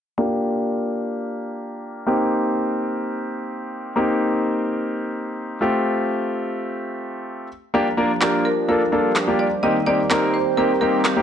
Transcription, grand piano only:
0.18 2.03 A#3 medium
0.18 2.03 D4 medium
0.18 2.04 F4 medium
0.18 2.04 G4 medium
2.07 3.92 A#3 medium
2.07 3.92 C4 medium
2.07 3.92 D#4 medium
2.07 3.93 G4 medium
3.96 5.58 A#3 medium
3.96 5.58 C4 medium
3.96 5.58 D#4 medium
3.96 5.59 G4 medium
5.61 7.46 A3 medium
5.61 7.47 C4 medium
5.61 7.47 F4 medium
5.61 7.47 G4 medium
7.74 7.86 A#3 medium
7.74 7.86 D4 medium
7.74 7.86 F4 medium
7.74 7.87 G4 medium
7.97 8.10 A#3 medium
7.97 8.10 D4 medium
7.97 8.10 F4 medium
7.97 8.10 A#4 medium
8.21 8.46 A#3 medium
8.21 8.46 D4 medium
8.21 8.46 F4 medium
8.21 8.46 A#4 medium
8.68 8.81 A#3 medium
8.68 8.81 D4 medium
8.68 8.81 F4 medium
8.68 8.81 A4 medium
8.92 9.11 A#3 medium
8.92 9.11 D4 medium
8.92 9.11 F4 medium
8.92 9.11 A4 medium
9.27 9.46 A#3 medium
9.27 9.46 D4 medium
9.27 9.46 F4 medium
9.27 9.46 G4 medium
9.63 9.75 A#3 medium
9.63 9.75 C4 medium
9.63 9.76 D#4 medium
9.63 9.76 G4 medium
9.87 9.99 A#3 medium
9.87 9.99 C4 medium
9.87 9.99 D#4 medium
9.87 9.99 G4 medium
10.10 10.35 A#3 medium
10.10 10.35 C4 medium
10.10 10.35 D#4 medium
10.10 10.35 A#4 medium
10.57 10.70 A#3 medium
10.57 10.70 C4 medium
10.57 10.70 D#4 medium
10.57 10.70 G4 medium
10.81 11.00 A#3 medium
10.81 11.00 C4 medium
10.81 11.00 D#4 medium
10.81 11.00 G4 medium
11.16 11.22 A#3 medium
11.16 11.22 C4 medium
11.16 11.22 D#4 medium
11.16 11.22 G4 medium

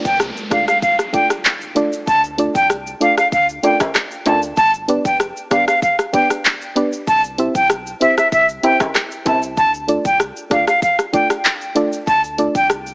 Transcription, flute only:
0.05 0.18 G5 medium
0.51 0.66 F5 medium
0.68 0.81 F5 medium
0.82 0.97 F5 medium
1.14 1.28 G5 medium
2.07 2.22 A5 loud
2.55 2.68 G5 medium
3.01 3.16 F5 medium
3.18 3.31 F5 medium
3.32 3.47 F5 medium
3.64 3.78 G5 medium
4.26 4.40 A5 medium
4.57 4.72 A5 loud
5.05 5.18 G5 medium
5.51 5.66 F5 medium
5.68 5.80 F5 medium
5.82 5.97 F5 medium
6.14 6.28 G5 medium
7.08 7.22 A5 loud
7.55 7.68 G5 medium
8.01 8.15 E5 medium
8.18 8.31 E5 medium
8.32 8.47 E5 medium
8.64 8.78 G5 medium
9.27 9.41 A5 medium
9.58 9.72 A5 loud
10.05 10.18 G5 medium
10.51 10.66 F5 medium
10.68 10.81 F5 medium
10.83 10.97 F5 medium
11.14 11.28 G5 medium
12.07 12.22 A5 loud
12.56 12.68 G5 medium

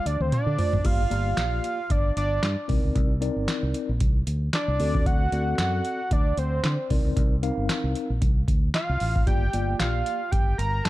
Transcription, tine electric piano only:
0.58 0.76 A3 medium
0.58 0.76 D4 medium
0.58 0.76 F4 medium
0.58 0.76 C5 medium
0.84 1.02 A#3 medium
0.84 1.02 F4 medium
0.84 1.02 G4 medium
0.84 1.02 D5 medium
1.10 1.78 A#3 medium
1.10 1.78 F4 medium
1.10 1.78 G4 medium
1.10 1.78 D5 medium
2.68 3.12 C4 medium
2.68 3.12 D#4 medium
2.68 3.12 A#4 medium
2.68 3.12 D5 medium
3.21 3.88 C4 medium
3.21 3.89 D#4 medium
3.21 3.89 A#4 medium
3.21 3.89 D5 medium
4.79 5.23 C4 medium
4.79 5.23 F#4 medium
4.79 5.23 A4 medium
4.79 5.23 D5 medium
5.32 5.99 C4 medium
5.32 5.99 F#4 medium
5.32 6.00 A4 medium
5.32 6.00 D5 medium
6.90 7.33 C4 medium
6.90 7.34 D#4 medium
6.90 7.34 A#4 medium
6.90 7.34 D5 medium
7.42 8.10 C4 medium
7.42 8.10 D#4 medium
7.42 8.10 A#4 medium
7.42 8.10 F5 loud
9.26 9.44 A#3 medium
9.26 9.44 F4 medium
9.26 9.45 G4 medium
9.26 9.45 D5 medium
9.53 10.20 A#3 medium
9.53 10.21 F4 medium
9.53 10.21 G4 medium
9.53 10.21 D5 medium

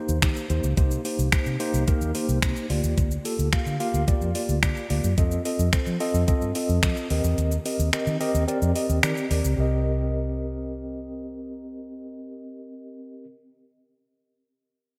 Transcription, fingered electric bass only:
0.09 0.18 D#2 loud
0.22 0.32 D#3 loud
0.50 0.59 D#2 medium
0.64 0.73 C#2 medium
0.77 0.96 C2 loud
1.19 1.28 C2 medium
1.46 1.56 C3 medium
1.74 1.83 C2 medium
2.01 2.11 D#2 medium
2.29 2.38 C2 medium
2.42 2.52 C3 loud
2.70 2.79 D2 loud
2.84 2.93 D#2 medium
2.98 3.16 D2 loud
3.39 3.48 D2 medium
3.66 3.76 D3 medium
3.94 4.03 D2 medium
4.21 4.31 F2 medium
4.49 4.58 D2 medium
4.63 4.72 D3 loud
4.90 5.00 D2 loud
5.04 5.13 F#2 medium
5.59 5.69 F2 medium
5.73 muted fingered electric bass stroke soft
5.87 5.96 F3 medium
6.14 6.24 F2 medium
6.42 6.51 G2 medium
6.69 6.79 F2 medium
6.83 6.92 F3 medium
7.11 7.20 D#2 medium
7.24 7.34 E2 medium
7.38 7.57 D#2 loud
7.79 7.89 D#2 loud
8.07 8.16 D#3 medium
8.34 8.44 D#2 medium
8.62 8.71 F2 medium
8.89 8.99 D#2 loud
9.03 9.13 D#3 loud
9.31 9.40 D#2 medium
9.44 9.54 C#2 medium
9.58 13.24 C2 loud

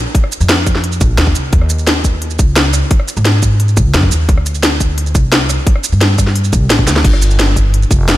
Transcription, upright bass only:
0.41 1.03 F2 medium
1.01 1.20 A#1 medium
1.18 1.34 D#2 medium
1.35 1.51 C2 medium
1.53 2.38 D#2 loud
2.39 2.81 C#2 medium
3.17 3.78 G#2 loud
3.77 3.96 C#2 loud
3.94 4.10 F#2 loud
4.12 4.27 D#2 medium
4.29 5.14 D2 loud
5.15 5.57 C2 medium
5.93 6.54 G2 loud
6.53 6.70 C2 loud
6.70 6.87 A1 medium
6.87 7.03 D2 medium
7.04 7.89 G1 loud
7.91 8.17 F1 medium

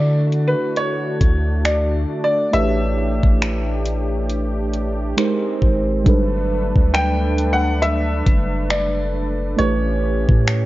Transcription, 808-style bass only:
0.00 0.55 D3 medium
1.21 2.06 D2 loud
2.54 3.20 A1 loud
3.23 5.14 A1 medium
5.62 6.04 G#1 loud
6.06 6.73 G1 loud
6.76 8.23 D2 medium
8.27 9.55 F#1 loud
9.59 10.26 A1 loud
10.29 10.66 A2 medium

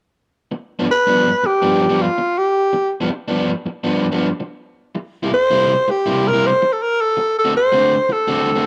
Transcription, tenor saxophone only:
0.91 1.48 B4 loud
1.46 2.03 G4 medium
2.01 2.39 F4 medium
2.38 2.93 G4 medium
5.33 5.92 C5 loud
5.90 6.29 G4 medium
6.28 6.48 A#4 medium
6.46 6.74 C5 medium
6.73 6.84 A4 medium
6.82 7.02 A#4 medium
7.01 7.37 A4 medium
7.39 7.55 A4 medium
7.57 8.13 C5 medium
8.12 8.66 A4 medium

